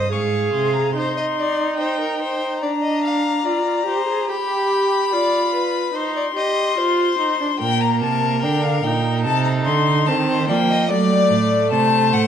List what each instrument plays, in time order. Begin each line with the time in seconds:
Already playing: cello G2, viola C5, violin D#5 D#6
0.12 cello G#2, viola G#4, violin F5 C#6
0.53 cello C3, violin C6
0.73 violin A#5
0.93 viola D#4, violin C5 C6
1.17 violin D#5
1.38 violin D5
1.78 violin C5 G5
2.00 violin A#4
2.22 violin C5
2.61 viola D4, violin D5 A#5
2.82 violin D#5
3.04 violin F5
3.45 viola F4, violin D5
3.66 viola F4
3.86 viola G4, violin C5
4.07 viola G#4
4.28 viola G4, violin G4 B5
5.12 viola F4, violin D5
5.54 violin B4
5.94 viola D#4, violin C5 C6
6.16 violin D5
6.36 viola G4, violin D#5
6.78 viola F4, violin C5
7.19 viola D#4
7.41 viola D4
7.60 cello A#2, viola A#3, violin A#4 G5
7.81 violin A#5
8.01 cello C3, violin A5
8.42 cello D3, viola D4, violin G5
8.62 violin F5
8.83 cello A#2, viola D#4, violin G5
9.24 cello C3, violin A4 A5
9.44 violin A#5
9.65 cello D3, violin C6
10.06 cello D#3, viola C4, violin C5 A5
10.29 violin C5
10.48 cello F3, viola A#3, violin D5 G5
10.70 violin D#5
10.89 cello F#3, viola A3, violin D5
11.30 cello A2
11.72 cello C3, violin C5 A5
12.13 cello A2, violin F#5